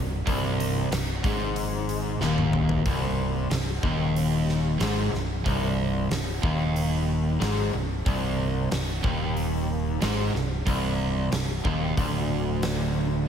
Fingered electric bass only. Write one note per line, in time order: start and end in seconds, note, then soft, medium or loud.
0.00 0.25 C1 medium
0.27 0.88 C1 medium
0.91 1.22 C1 medium
1.24 2.18 G#1 medium
2.20 2.82 D#1 medium
2.86 3.47 C1 medium
3.51 3.81 C1 medium
3.84 4.77 D#1 medium
4.80 5.11 G#1 medium
5.13 5.43 C1 medium
5.46 6.07 C1 medium
6.11 6.41 C1 medium
6.43 7.37 D#1 medium
7.41 7.72 G#1 medium
7.74 8.04 C1 medium
8.06 8.67 C1 medium
8.72 9.02 C1 medium
9.04 9.98 D#1 medium
10.03 10.33 G#1 medium
10.34 10.65 C1 medium
10.67 11.28 C1 medium
11.33 11.63 C1 medium
11.65 11.95 D#1 medium
11.97 13.23 D1 loud